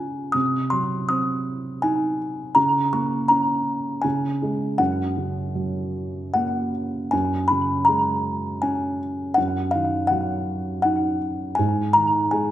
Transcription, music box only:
0.00 0.37 G#5 medium
0.32 0.68 D#6 medium
0.70 1.09 C6 medium
1.09 1.85 D#6 medium
1.82 2.52 G#5 medium
2.55 2.94 A#5 medium
2.93 3.27 C#6 medium
3.28 4.06 A#5 medium
4.02 4.81 G#5 medium
4.78 6.30 F#5 medium
6.34 7.14 F#5 medium
7.11 7.50 G#5 medium
7.48 7.87 B5 medium
7.85 8.64 A#5 medium
8.62 9.39 G#5 medium
9.34 9.73 F#5 medium
9.71 10.10 F5 medium
10.07 10.81 F#5 medium
10.82 11.59 F#5 medium
11.55 11.91 G#5 medium
11.93 12.33 A#5 medium
12.31 12.51 G#5 medium

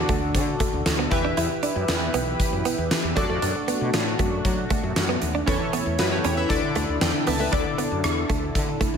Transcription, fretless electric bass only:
0.09 0.36 D2 medium
0.35 0.54 D3 loud
0.73 0.83 D2 medium
0.86 1.05 D2 medium
1.12 1.31 E2 medium
1.37 1.47 E2 loud
1.76 1.85 F#2 medium
1.89 2.08 E2 medium
2.14 2.33 B1 medium
2.52 2.62 F#2 medium
2.78 2.88 E2 medium
3.04 3.14 E2 medium
3.17 3.26 F#2 loud
3.30 3.39 F2 medium
3.42 3.52 F#2 loud
3.81 3.91 B2 medium
3.94 4.13 A2 medium
4.19 4.39 F#2 medium
4.45 4.64 F#3 loud
4.83 4.93 F#2 medium
4.96 5.15 F#2 medium
5.22 5.41 D#2 medium
5.48 5.57 E2 loud
5.86 5.96 E2 medium
5.99 6.18 F#2 medium
6.24 6.44 E2 medium
6.50 6.60 D2 loud
6.63 6.73 D3 medium
6.76 6.85 D2 medium
6.89 6.98 D2 medium
7.01 7.11 E2 medium
7.27 7.46 C#2 medium
7.53 7.62 D2 medium
7.91 8.01 F#2 medium
8.04 8.23 E2 medium
8.30 8.49 D2 medium
8.55 8.74 D3 medium
8.94 8.97 D2 medium

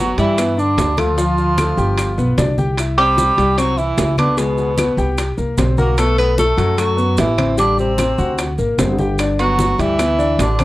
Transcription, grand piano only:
0.00 0.11 B3 medium
0.00 0.11 B4 medium
0.18 0.34 G3 medium
0.18 0.35 G4 medium
0.38 0.54 B3 medium
0.38 0.54 B4 medium
0.58 0.91 D4 medium
0.58 0.91 D5 medium
0.98 1.14 A3 medium
0.98 1.14 A4 medium
1.18 1.50 F3 medium
1.18 1.51 F4 medium
1.58 1.74 A3 medium
1.58 1.75 A4 medium
1.78 2.10 G4 medium
1.78 2.11 G5 medium
2.18 2.34 B3 medium
2.18 2.34 B4 medium
2.38 2.54 D4 medium
2.38 2.54 D5 medium
2.58 2.74 G4 medium
2.58 2.75 G5 medium
2.78 2.94 E4 medium
2.78 2.95 E5 medium
2.98 3.31 C4 medium
2.98 3.31 C5 medium
3.38 3.54 G3 medium
3.38 3.54 G4 medium
3.58 3.74 C4 medium
3.58 3.74 C5 medium
3.78 4.11 E4 medium
3.78 4.11 E5 medium
4.18 4.34 B3 medium
4.18 4.35 B4 medium
4.37 4.70 G#3 medium
4.37 4.70 G#4 medium
4.78 4.94 B3 medium
4.78 4.94 B4 medium
4.98 5.31 G4 medium
4.98 5.31 G5 medium
5.37 5.54 A#3 medium
5.37 5.54 A#4 medium
5.58 5.74 C4 medium
5.58 5.74 C5 medium
5.78 5.94 F#4 medium
5.78 5.95 F#5 medium
5.98 6.14 B3 medium
5.98 6.15 B4 medium
6.18 6.51 A3 medium
6.18 6.51 A4 medium
6.57 6.74 F#3 medium
6.57 6.74 F#4 medium
6.78 6.94 A3 medium
6.78 6.95 A4 medium
6.97 7.30 B3 medium
6.97 7.30 B4 medium
7.38 7.54 C4 medium
7.38 7.54 C5 medium
7.58 7.91 G3 medium
7.58 7.91 G4 medium
7.99 8.15 C4 medium
7.99 8.15 C5 medium
8.18 8.51 F#4 medium
8.18 8.51 F#5 medium
8.58 8.75 A#3 medium
8.58 8.75 A#4 medium
8.79 8.95 C4 medium
8.79 8.95 C5 medium
8.99 9.15 G4 medium
8.99 9.16 G5 medium
9.20 9.36 D4 medium
9.20 9.36 D5 medium
9.40 9.72 B3 medium
9.40 9.72 B4 medium
9.79 9.96 G3 medium
9.79 9.96 G4 medium
9.99 10.16 B3 medium
9.99 10.16 B4 medium
10.19 10.52 D4 medium
10.19 10.52 D5 medium
10.60 10.64 C4 medium
10.60 10.64 C5 medium

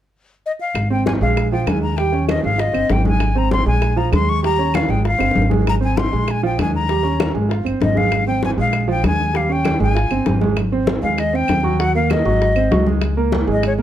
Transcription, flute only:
0.46 0.52 D#5 medium
0.60 0.89 F5 medium
0.92 1.06 G5 medium
1.06 1.12 G#5 medium
1.22 1.50 F5 medium
1.52 1.69 G5 medium
1.67 1.82 G#5 medium
1.82 1.98 A#5 medium
1.97 2.28 G5 medium
2.29 2.43 D#5 medium
2.44 2.61 F5 medium
2.60 2.93 D#5 medium
2.92 3.06 G5 medium
3.08 3.40 G#5 medium
3.38 3.52 A#5 medium
3.53 3.67 C6 medium
3.68 3.99 G#5 medium
3.97 4.13 A#5 medium
4.14 4.31 C6 medium
4.29 4.44 C#6 loud
4.44 4.76 A#5 medium
4.75 4.92 F5 medium
4.90 5.05 G5 medium
5.07 5.49 F5 medium
5.69 5.75 A#5 medium
5.84 6.00 G#5 medium
5.99 6.32 C6 medium
6.31 6.45 G#5 medium
6.46 6.59 G5 medium
6.61 6.74 G#5 medium
6.76 7.32 A#5 medium
7.83 7.99 D#5 medium
7.97 8.27 F5 loud
8.28 8.42 G5 medium
8.45 8.51 G#5 medium
8.60 8.88 F5 loud
8.91 9.04 G5 medium
9.06 9.38 G#5 medium
9.36 9.54 F5 medium
9.52 9.82 G5 medium
9.83 10.39 G#5 medium
11.03 11.21 F5 medium
11.20 11.37 D#5 medium
11.36 11.81 G5 medium
11.80 11.95 F#5 medium
11.96 12.13 F5 medium
12.11 12.87 D#5 medium
13.52 13.64 D#5 medium
13.67 13.73 C#5 medium

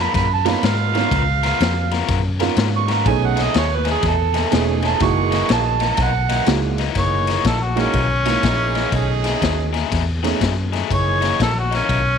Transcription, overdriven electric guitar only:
0.00 0.25 C#3 medium
0.00 0.25 B3 medium
0.00 0.25 F4 medium
0.00 0.24 A#4 medium
0.45 0.73 C#3 medium
0.45 0.73 B3 medium
0.45 0.73 F4 medium
0.45 0.73 A#4 medium
0.94 1.22 C#3 medium
0.94 1.22 B3 medium
0.94 1.22 F4 medium
0.94 1.21 A#4 medium
1.43 1.71 C#3 medium
1.43 1.71 B3 medium
1.43 1.71 F4 loud
1.43 1.70 A#4 medium
1.92 2.19 C#3 medium
1.92 2.19 B3 medium
1.92 2.19 F4 medium
1.92 2.19 A#4 medium
2.40 2.68 C#3 medium
2.40 2.68 B3 medium
2.40 2.67 F4 medium
2.40 2.67 A#4 loud
2.88 3.07 C#3 medium
2.88 3.07 B3 medium
2.88 3.07 F4 medium
2.88 3.06 A#4 medium
3.36 3.65 B2 medium
3.36 3.64 A3 medium
3.36 3.64 D#4 loud
3.36 3.64 G#4 loud
3.85 4.13 B2 medium
3.85 4.13 A3 medium
3.85 4.13 D#4 medium
3.85 4.13 G#4 medium
4.34 4.62 B2 medium
4.34 4.62 A3 medium
4.34 4.62 D#4 medium
4.34 4.62 G#4 loud
4.83 5.02 B2 medium
4.83 5.02 A3 medium
4.83 5.01 D#4 medium
4.83 5.01 G#4 medium
5.31 5.60 F#2 medium
5.31 5.60 E3 medium
5.31 5.60 A#3 loud
5.31 5.59 D#4 loud
5.81 6.09 F#2 medium
5.81 6.09 E3 medium
5.81 6.09 A#3 medium
5.81 6.09 D#4 medium
6.29 6.58 F#2 medium
6.29 6.57 E3 medium
6.29 6.57 A#3 medium
6.29 6.57 D#4 loud
6.80 6.98 F#2 medium
6.80 6.98 E3 medium
6.80 6.97 A#3 medium
6.80 6.97 D#4 loud
7.28 7.56 F#2 medium
7.28 7.56 E3 medium
7.28 7.56 A#3 medium
7.28 7.56 D#4 medium
7.77 8.05 F#2 medium
7.77 8.05 E3 medium
7.77 8.05 A#3 medium
7.77 8.04 D#4 medium
8.26 8.54 F#2 medium
8.26 8.54 E3 medium
8.26 8.54 A#3 medium
8.26 8.54 D#4 medium
8.76 8.94 F#2 medium
8.76 8.94 E3 medium
8.76 8.94 A#3 medium
8.76 8.94 D#4 medium
9.24 9.53 B2 medium
9.24 9.52 A3 medium
9.24 9.52 D#4 medium
9.24 9.52 G#4 loud
9.73 10.01 B2 medium
9.73 10.01 A3 medium
9.73 10.01 D#4 medium
9.73 10.01 G#4 medium
10.23 10.51 B2 medium
10.23 10.51 A3 medium
10.23 10.51 D#4 medium
10.23 10.51 G#4 medium
10.73 10.91 B2 medium
10.73 10.91 A3 medium
10.73 10.91 D#4 medium
10.73 10.91 G#4 medium
11.21 11.50 F#2 medium
11.21 11.50 E3 medium
11.21 11.49 A#3 medium
11.21 11.49 D#4 loud
11.71 11.99 F#2 medium
11.71 11.99 E3 medium
11.71 11.99 A#3 medium
11.71 11.99 D#4 medium

